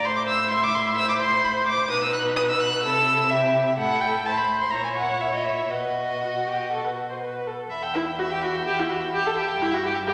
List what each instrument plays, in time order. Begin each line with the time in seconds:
0.04 cello A2, violin E4 C6, viola C5
0.16 violin D6
0.28 violin E6
0.51 viola E5, violin C6
0.63 violin D6
0.75 violin C6
0.97 viola C5, violin E6
1.09 violin D6
1.21 violin C6
1.44 violin B5
1.57 violin C6
1.67 violin D6
1.90 cello B2, violin D#4 D#6, viola B4
2.03 violin E6
2.13 violin F#6
2.36 violin D#6
2.50 violin E6
2.60 violin F#6
2.83 cello C3, violin E4 E6, viola A4
3.30 viola G4, violin E5
3.67 violin E5
3.77 cello A2, violin E4 F#5, viola A4
4.01 violin G5
4.25 violin E4 A5, viola C5
4.37 violin B5
4.61 violin C6
4.71 cello A#2, violin E4 A#5, viola C#5
4.84 violin G#5
4.97 violin F#5
5.21 violin E4 E5
5.34 violin D#5
5.45 violin E5
5.70 cello B2, violin F#4 D#5, viola B4
6.22 viola F#4
6.46 viola G4
6.72 viola A4
6.85 viola B4
7.09 viola C5
7.21 viola B4
7.47 viola A4
7.70 cello E2, violin E5 B5
7.83 violin G5 E6
7.94 viola E4, violin E5 B5
8.06 violin G5 E6
8.18 viola F#4, violin E5 B5
8.30 viola G4, violin G5 E6
8.41 viola F#4, violin E5 B5
8.54 violin G5 E6
8.65 viola G4, violin E5 B5
8.78 viola E4, violin G5 E6
8.89 viola F#4, violin E5 B5
9.00 violin G5 E6
9.12 viola G4, violin E5 B5
9.23 viola A4, violin G5 E6
9.36 viola G4, violin E5 B5
9.47 violin G5 E6
9.59 cello G2, viola E4, violin G5 B5
9.71 viola F#4, violin E5 G5
9.83 viola G4, violin G5 B5
9.95 violin E5 G5
10.07 viola G4, violin G5 B5